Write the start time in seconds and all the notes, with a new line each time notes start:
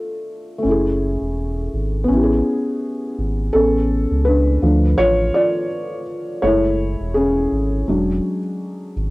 Already playing: A3 D4 F4 A4
0.58 A3
0.63 F#1 C#4
0.67 E4
0.71 G#4
1.21 E1
1.74 G#1
2.04 B3
2.08 A1 C#4
2.12 E4
2.17 G4
2.23 G#4
3.19 G#1
3.53 A1 B3 C#4 G#4 A4
4.11 C#2
4.25 D4 B4
4.62 D2 F3 A3 D4
4.98 A1 F4 C#5
5.34 F4 D5
6.42 F#1 G#3 A3 E4 C#5
7.00 E1
7.14 C#4 G#4
7.52 G#1
7.88 E1 F#3 G#3 D4
8.96 G#1